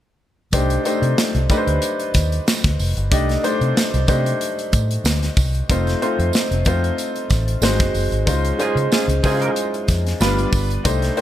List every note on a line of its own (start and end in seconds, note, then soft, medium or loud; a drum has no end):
0.52 0.76 C2 medium
0.52 0.79 A3 medium
0.52 0.80 D4 medium
0.52 0.80 D#4 medium
0.52 0.80 G4 medium
0.52 0.80 C5 medium
0.52 kick loud
0.52 closed hi-hat loud
0.52 tambourine soft
0.70 closed hi-hat medium
0.85 1.38 A3 medium
0.85 1.38 D4 medium
0.85 1.39 D#4 medium
0.85 1.39 G4 medium
0.85 1.39 C5 medium
0.85 closed hi-hat medium
0.85 tambourine soft
1.02 1.13 C3 medium
1.02 closed hi-hat soft
1.18 snare loud
1.18 tambourine medium
1.35 1.46 C2 medium
1.35 closed hi-hat soft
1.49 2.55 A3 medium
1.49 2.55 D4 medium
1.49 2.55 D#4 medium
1.49 2.56 G4 medium
1.49 1.57 B4 medium
1.49 kick medium
1.49 closed hi-hat medium
1.49 tambourine soft
1.57 2.59 C5 medium
1.67 1.78 D2 medium
1.67 closed hi-hat soft
1.82 closed hi-hat medium
1.82 tambourine soft
2.00 closed hi-hat soft
2.14 2.38 D#2 medium
2.14 kick medium
2.14 snare soft
2.14 closed hi-hat medium
2.14 tambourine soft
2.32 closed hi-hat soft
2.48 snare loud
2.48 tambourine medium
2.64 2.75 D2 medium
2.64 kick loud
2.64 snare soft
2.64 closed hi-hat soft
2.79 2.92 F1 loud
2.79 open hi-hat medium
2.79 tambourine soft
2.97 3.08 G1 medium
2.97 closed hi-hat medium
3.11 3.35 C2 medium
3.11 3.38 A3 medium
3.11 3.38 D4 medium
3.11 3.38 D#4 medium
3.11 3.38 G4 medium
3.11 3.38 D#5 medium
3.11 kick loud
3.11 closed hi-hat loud
3.11 tambourine medium
3.29 snare soft
3.29 closed hi-hat soft
3.43 3.97 A3 medium
3.43 3.97 D4 medium
3.43 3.97 D#4 medium
3.43 3.97 G4 medium
3.43 3.97 C5 medium
3.43 closed hi-hat medium
3.43 tambourine soft
3.61 3.72 C3 loud
3.61 closed hi-hat soft
3.77 snare loud
3.77 tambourine medium
3.94 4.05 C2 loud
3.94 closed hi-hat medium
4.07 4.32 C3 medium
4.07 5.13 A3 medium
4.07 5.13 D4 medium
4.07 5.13 D#4 medium
4.07 5.14 G4 medium
4.07 5.14 C5 medium
4.07 kick medium
4.07 closed hi-hat medium
4.07 tambourine soft
4.26 closed hi-hat soft
4.41 closed hi-hat medium
4.59 closed hi-hat soft
4.73 4.96 A2 medium
4.73 kick medium
4.73 closed hi-hat medium
4.73 tambourine soft
4.91 closed hi-hat medium
5.04 5.28 D2 medium
5.04 snare loud
5.04 tambourine medium
5.23 snare soft
5.23 closed hi-hat soft
5.37 5.61 C2 medium
5.37 kick loud
5.37 open hi-hat medium
5.37 tambourine soft
5.55 closed hi-hat soft
5.69 5.93 F1 loud
5.69 5.96 A3 medium
5.69 5.96 C4 medium
5.69 5.96 D#4 medium
5.69 5.96 F4 medium
5.69 5.97 C5 medium
5.69 kick loud
5.69 closed hi-hat loud
5.69 tambourine soft
5.87 snare soft
5.87 closed hi-hat soft
6.01 6.55 A3 medium
6.01 6.55 C4 medium
6.01 6.55 D#4 medium
6.01 6.55 F4 medium
6.01 6.55 C5 medium
6.01 closed hi-hat medium
6.19 6.30 F2 medium
6.19 closed hi-hat soft
6.33 snare loud
6.33 tambourine medium
6.51 6.62 F1 loud
6.51 closed hi-hat soft
6.65 6.90 F2 medium
6.65 7.63 A3 medium
6.65 7.61 C4 medium
6.65 7.61 D#4 medium
6.65 7.63 F4 medium
6.65 7.62 C5 medium
6.65 kick medium
6.65 closed hi-hat medium
6.65 tambourine soft
6.84 closed hi-hat soft
6.98 closed hi-hat medium
6.98 tambourine soft
7.16 closed hi-hat soft
7.30 7.54 A1 medium
7.30 kick medium
7.30 snare soft
7.30 closed hi-hat medium
7.30 tambourine soft
7.48 closed hi-hat medium
7.61 7.80 G#1 medium
7.61 8.16 G#3 medium
7.61 8.16 C4 medium
7.61 8.16 D#4 medium
7.61 8.16 F#4 medium
7.61 8.17 C5 medium
7.61 snare loud
7.61 tambourine medium
7.80 7.91 F#1 medium
7.80 kick loud
7.80 snare soft
7.80 closed hi-hat medium
7.94 8.08 F#1 medium
7.94 open hi-hat medium
7.94 tambourine soft
8.12 8.23 G#1 medium
8.12 closed hi-hat medium
8.26 8.51 C#2 loud
8.26 8.53 G#3 medium
8.26 8.54 C#4 medium
8.26 8.54 D#4 medium
8.26 8.54 F4 medium
8.26 8.54 C5 medium
8.26 kick loud
8.26 closed hi-hat medium
8.26 tambourine soft
8.45 closed hi-hat medium
8.59 9.13 G#3 medium
8.59 9.13 C#4 medium
8.59 9.13 D#4 medium
8.59 8.74 D#4 medium
8.59 9.13 F4 medium
8.59 8.74 F4 medium
8.59 8.74 G#4 medium
8.59 9.13 C5 medium
8.59 closed hi-hat medium
8.59 tambourine soft
8.75 8.87 C#3 medium
8.75 closed hi-hat soft
8.90 9.06 D#4 medium
8.90 9.06 F4 medium
8.90 9.06 G#4 medium
8.90 snare loud
8.90 tambourine medium
9.08 9.19 C#2 loud
9.08 closed hi-hat medium
9.23 9.48 C#3 medium
9.23 10.20 G#3 medium
9.23 10.21 C#4 medium
9.23 9.51 D#4 loud
9.23 10.21 D#4 medium
9.23 9.31 E4 medium
9.23 9.51 F4 medium
9.23 9.51 G#4 loud
9.23 10.21 C5 medium
9.23 kick medium
9.23 open hi-hat medium
9.23 tambourine soft
9.30 10.19 F4 medium
9.42 closed hi-hat soft
9.56 closed hi-hat medium
9.56 tambourine soft
9.74 closed hi-hat soft
9.88 10.12 F2 medium
9.88 kick medium
9.88 snare soft
9.88 closed hi-hat medium
9.88 tambourine soft
10.07 snare soft
10.07 closed hi-hat medium
10.20 10.44 G1 medium
10.20 10.74 G3 medium
10.20 10.74 B3 medium
10.20 10.74 D4 medium
10.20 10.74 F4 medium
10.20 10.74 B4 medium
10.20 snare loud
10.20 tambourine medium
10.39 closed hi-hat soft
10.52 10.77 G1 medium
10.52 kick loud
10.52 open hi-hat medium
10.52 tambourine soft
10.71 closed hi-hat soft
10.84 11.09 C2 loud
10.84 11.11 A3 medium
10.84 11.11 D4 medium
10.84 11.12 D#4 medium
10.84 11.12 G4 medium
10.84 11.12 C5 medium
10.84 kick loud
10.84 closed hi-hat medium
10.84 tambourine soft
11.02 snare soft
11.02 closed hi-hat medium
11.16 11.21 A3 medium
11.16 11.21 D4 medium
11.16 11.21 D#4 medium
11.16 11.21 G4 medium
11.16 11.21 C5 medium
11.16 closed hi-hat medium
11.16 tambourine soft